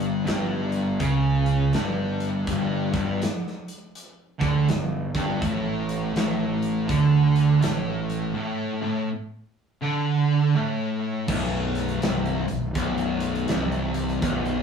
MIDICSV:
0, 0, Header, 1, 4, 480
1, 0, Start_track
1, 0, Tempo, 734394
1, 1622, Time_signature, 4, 2, 24, 8
1, 9560, End_track
2, 0, Start_track
2, 0, Title_t, "Distorted electric guitar"
2, 0, Program_c, 0, 30
2, 0, Note_on_c, 0, 43, 99
2, 160, Note_off_c, 0, 43, 0
2, 168, Note_on_c, 0, 43, 98
2, 650, Note_off_c, 0, 43, 0
2, 652, Note_on_c, 0, 49, 104
2, 1131, Note_off_c, 0, 49, 0
2, 1133, Note_on_c, 0, 43, 109
2, 1612, Note_off_c, 0, 43, 0
2, 1618, Note_on_c, 0, 43, 104
2, 1909, Note_off_c, 0, 43, 0
2, 1917, Note_on_c, 0, 43, 99
2, 2092, Note_off_c, 0, 43, 0
2, 2877, Note_on_c, 0, 50, 119
2, 3053, Note_off_c, 0, 50, 0
2, 3066, Note_on_c, 0, 43, 80
2, 3306, Note_off_c, 0, 43, 0
2, 3367, Note_on_c, 0, 43, 95
2, 3538, Note_off_c, 0, 43, 0
2, 3545, Note_on_c, 0, 45, 102
2, 4018, Note_off_c, 0, 45, 0
2, 4026, Note_on_c, 0, 45, 110
2, 4495, Note_on_c, 0, 50, 111
2, 4499, Note_off_c, 0, 45, 0
2, 4973, Note_off_c, 0, 50, 0
2, 4976, Note_on_c, 0, 45, 109
2, 5444, Note_off_c, 0, 45, 0
2, 5452, Note_on_c, 0, 45, 108
2, 5750, Note_off_c, 0, 45, 0
2, 5764, Note_on_c, 0, 45, 102
2, 5937, Note_off_c, 0, 45, 0
2, 6416, Note_on_c, 0, 50, 100
2, 6894, Note_off_c, 0, 50, 0
2, 6896, Note_on_c, 0, 45, 108
2, 7373, Note_off_c, 0, 45, 0
2, 7377, Note_on_c, 0, 35, 110
2, 7853, Note_off_c, 0, 35, 0
2, 7856, Note_on_c, 0, 36, 107
2, 8152, Note_off_c, 0, 36, 0
2, 8155, Note_on_c, 0, 35, 72
2, 8301, Note_off_c, 0, 35, 0
2, 8329, Note_on_c, 0, 35, 113
2, 8809, Note_off_c, 0, 35, 0
2, 8820, Note_on_c, 0, 36, 120
2, 9285, Note_off_c, 0, 36, 0
2, 9287, Note_on_c, 0, 35, 105
2, 9560, Note_off_c, 0, 35, 0
2, 9560, End_track
3, 0, Start_track
3, 0, Title_t, "Fingered electric bass"
3, 0, Program_c, 1, 33
3, 0, Note_on_c, 1, 31, 101
3, 154, Note_off_c, 1, 31, 0
3, 184, Note_on_c, 1, 31, 90
3, 637, Note_off_c, 1, 31, 0
3, 657, Note_on_c, 1, 37, 90
3, 1113, Note_off_c, 1, 37, 0
3, 1140, Note_on_c, 1, 31, 101
3, 1594, Note_off_c, 1, 31, 0
3, 1619, Note_on_c, 1, 31, 95
3, 1901, Note_off_c, 1, 31, 0
3, 1919, Note_on_c, 1, 31, 97
3, 2086, Note_off_c, 1, 31, 0
3, 2885, Note_on_c, 1, 38, 93
3, 3050, Note_off_c, 1, 38, 0
3, 3063, Note_on_c, 1, 31, 83
3, 3343, Note_off_c, 1, 31, 0
3, 3364, Note_on_c, 1, 31, 98
3, 3529, Note_off_c, 1, 31, 0
3, 3546, Note_on_c, 1, 33, 101
3, 3997, Note_off_c, 1, 33, 0
3, 4027, Note_on_c, 1, 33, 85
3, 4478, Note_off_c, 1, 33, 0
3, 4506, Note_on_c, 1, 38, 96
3, 4958, Note_off_c, 1, 38, 0
3, 4989, Note_on_c, 1, 33, 96
3, 5439, Note_off_c, 1, 33, 0
3, 7376, Note_on_c, 1, 23, 98
3, 7833, Note_off_c, 1, 23, 0
3, 7863, Note_on_c, 1, 24, 85
3, 8144, Note_off_c, 1, 24, 0
3, 8166, Note_on_c, 1, 23, 75
3, 8330, Note_off_c, 1, 23, 0
3, 8335, Note_on_c, 1, 23, 90
3, 8792, Note_off_c, 1, 23, 0
3, 8824, Note_on_c, 1, 24, 108
3, 9276, Note_off_c, 1, 24, 0
3, 9296, Note_on_c, 1, 23, 102
3, 9560, Note_off_c, 1, 23, 0
3, 9560, End_track
4, 0, Start_track
4, 0, Title_t, "Drums"
4, 2, Note_on_c, 9, 42, 60
4, 67, Note_off_c, 9, 42, 0
4, 177, Note_on_c, 9, 42, 91
4, 186, Note_on_c, 9, 38, 108
4, 242, Note_off_c, 9, 42, 0
4, 251, Note_off_c, 9, 38, 0
4, 472, Note_on_c, 9, 42, 65
4, 537, Note_off_c, 9, 42, 0
4, 653, Note_on_c, 9, 42, 90
4, 654, Note_on_c, 9, 36, 101
4, 718, Note_off_c, 9, 42, 0
4, 720, Note_off_c, 9, 36, 0
4, 954, Note_on_c, 9, 42, 72
4, 1020, Note_off_c, 9, 42, 0
4, 1132, Note_on_c, 9, 42, 93
4, 1141, Note_on_c, 9, 38, 102
4, 1197, Note_off_c, 9, 42, 0
4, 1206, Note_off_c, 9, 38, 0
4, 1440, Note_on_c, 9, 42, 73
4, 1506, Note_off_c, 9, 42, 0
4, 1616, Note_on_c, 9, 36, 111
4, 1617, Note_on_c, 9, 42, 100
4, 1682, Note_off_c, 9, 36, 0
4, 1682, Note_off_c, 9, 42, 0
4, 1919, Note_on_c, 9, 36, 104
4, 1922, Note_on_c, 9, 42, 75
4, 1985, Note_off_c, 9, 36, 0
4, 1987, Note_off_c, 9, 42, 0
4, 2103, Note_on_c, 9, 42, 101
4, 2112, Note_on_c, 9, 38, 103
4, 2168, Note_off_c, 9, 42, 0
4, 2177, Note_off_c, 9, 38, 0
4, 2267, Note_on_c, 9, 38, 34
4, 2333, Note_off_c, 9, 38, 0
4, 2407, Note_on_c, 9, 42, 69
4, 2472, Note_off_c, 9, 42, 0
4, 2584, Note_on_c, 9, 42, 94
4, 2650, Note_off_c, 9, 42, 0
4, 2883, Note_on_c, 9, 36, 104
4, 2888, Note_on_c, 9, 42, 74
4, 2949, Note_off_c, 9, 36, 0
4, 2953, Note_off_c, 9, 42, 0
4, 3062, Note_on_c, 9, 42, 88
4, 3071, Note_on_c, 9, 38, 95
4, 3128, Note_off_c, 9, 42, 0
4, 3137, Note_off_c, 9, 38, 0
4, 3364, Note_on_c, 9, 36, 102
4, 3368, Note_on_c, 9, 42, 73
4, 3429, Note_off_c, 9, 36, 0
4, 3434, Note_off_c, 9, 42, 0
4, 3542, Note_on_c, 9, 36, 113
4, 3547, Note_on_c, 9, 42, 91
4, 3608, Note_off_c, 9, 36, 0
4, 3612, Note_off_c, 9, 42, 0
4, 3850, Note_on_c, 9, 42, 69
4, 3915, Note_off_c, 9, 42, 0
4, 4025, Note_on_c, 9, 42, 89
4, 4035, Note_on_c, 9, 38, 109
4, 4091, Note_off_c, 9, 42, 0
4, 4100, Note_off_c, 9, 38, 0
4, 4329, Note_on_c, 9, 42, 69
4, 4395, Note_off_c, 9, 42, 0
4, 4504, Note_on_c, 9, 36, 105
4, 4506, Note_on_c, 9, 42, 97
4, 4570, Note_off_c, 9, 36, 0
4, 4572, Note_off_c, 9, 42, 0
4, 4809, Note_on_c, 9, 42, 71
4, 4874, Note_off_c, 9, 42, 0
4, 4983, Note_on_c, 9, 42, 97
4, 4992, Note_on_c, 9, 38, 101
4, 5048, Note_off_c, 9, 42, 0
4, 5057, Note_off_c, 9, 38, 0
4, 5292, Note_on_c, 9, 42, 73
4, 5357, Note_off_c, 9, 42, 0
4, 7373, Note_on_c, 9, 49, 122
4, 7375, Note_on_c, 9, 36, 108
4, 7438, Note_off_c, 9, 49, 0
4, 7440, Note_off_c, 9, 36, 0
4, 7681, Note_on_c, 9, 42, 72
4, 7690, Note_on_c, 9, 38, 31
4, 7747, Note_off_c, 9, 42, 0
4, 7756, Note_off_c, 9, 38, 0
4, 7768, Note_on_c, 9, 42, 51
4, 7834, Note_off_c, 9, 42, 0
4, 7856, Note_on_c, 9, 42, 98
4, 7866, Note_on_c, 9, 38, 123
4, 7922, Note_off_c, 9, 42, 0
4, 7931, Note_off_c, 9, 38, 0
4, 8010, Note_on_c, 9, 42, 46
4, 8075, Note_off_c, 9, 42, 0
4, 8158, Note_on_c, 9, 42, 72
4, 8223, Note_off_c, 9, 42, 0
4, 8335, Note_on_c, 9, 42, 105
4, 8336, Note_on_c, 9, 36, 112
4, 8401, Note_off_c, 9, 36, 0
4, 8401, Note_off_c, 9, 42, 0
4, 8482, Note_on_c, 9, 42, 49
4, 8547, Note_off_c, 9, 42, 0
4, 8630, Note_on_c, 9, 42, 83
4, 8695, Note_off_c, 9, 42, 0
4, 8727, Note_on_c, 9, 42, 49
4, 8792, Note_off_c, 9, 42, 0
4, 8810, Note_on_c, 9, 42, 98
4, 8819, Note_on_c, 9, 38, 105
4, 8875, Note_off_c, 9, 42, 0
4, 8884, Note_off_c, 9, 38, 0
4, 8966, Note_on_c, 9, 42, 52
4, 9032, Note_off_c, 9, 42, 0
4, 9113, Note_on_c, 9, 42, 88
4, 9178, Note_off_c, 9, 42, 0
4, 9207, Note_on_c, 9, 42, 50
4, 9272, Note_off_c, 9, 42, 0
4, 9295, Note_on_c, 9, 42, 103
4, 9296, Note_on_c, 9, 36, 110
4, 9360, Note_off_c, 9, 42, 0
4, 9362, Note_off_c, 9, 36, 0
4, 9447, Note_on_c, 9, 42, 50
4, 9512, Note_off_c, 9, 42, 0
4, 9560, End_track
0, 0, End_of_file